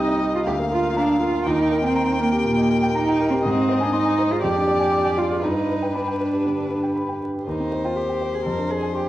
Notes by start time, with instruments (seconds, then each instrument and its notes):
Already playing: grand piano C2 C4 G4 D#5 G5, cello D#4, violin D#5
0.08 grand piano D#5
0.20 grand piano G4
0.34 grand piano D#4, cello F4
0.46 grand piano D2, cello G4, violin F5
0.59 grand piano A#3
0.71 cello F4, grand piano A#4
0.84 grand piano F5
0.96 cello D4, grand piano A#5
1.09 grand piano F5
1.21 cello F4, grand piano A#4
1.34 grand piano F4
1.46 grand piano D#2, cello D#4, violin G5
1.59 grand piano D#4
1.71 grand piano A#4
1.83 cello C4, grand piano G5
1.96 grand piano A#5
2.07 grand piano G5
2.20 cello A#3, grand piano A#4
2.32 grand piano G4
2.45 grand piano A#2, cello A#3
2.57 grand piano D#4
2.69 grand piano A#4
2.82 grand piano G5
2.95 cello D#4, grand piano A#5
3.08 grand piano G5
3.21 grand piano A#4
3.30 cello C4, grand piano G4
3.44 grand piano G#2, cello C4, violin D#5
3.56 grand piano D#4
3.69 grand piano C5
3.80 cello D4, grand piano G#5
3.93 cello D#4, grand piano C6
4.05 grand piano G#5
4.18 grand piano C5
4.30 cello F4, grand piano G#4
4.42 grand piano F2, cello G4, violin D5
4.56 grand piano D4
4.67 grand piano D5
4.79 grand piano G#5
4.92 grand piano D6
5.04 grand piano G#5
5.17 cello F4, grand piano D5
5.30 grand piano G#4
5.42 grand piano G2, cello D#4, violin B4
5.56 grand piano D4
5.69 grand piano B4
5.82 grand piano G5
5.94 cello D4, grand piano B5
6.07 grand piano G5
6.20 grand piano B4
6.33 grand piano G4
6.45 grand piano D3
6.58 grand piano D4
6.70 grand piano B4
6.83 grand piano G5
6.96 grand piano B5
7.08 grand piano G5
7.22 grand piano B4
7.34 grand piano G4
7.46 grand piano D#2, cello D#4, violin C5
7.60 grand piano C4
7.72 grand piano C5
7.84 cello F4, grand piano G5
7.96 cello G4, grand piano C6
8.09 grand piano G5
8.21 grand piano C5
8.34 grand piano G4, cello G#4
8.45 grand piano F2, cello A#4
8.58 grand piano D4
8.70 cello G#4, grand piano C5
8.82 grand piano G#5
8.95 cello G4, grand piano C6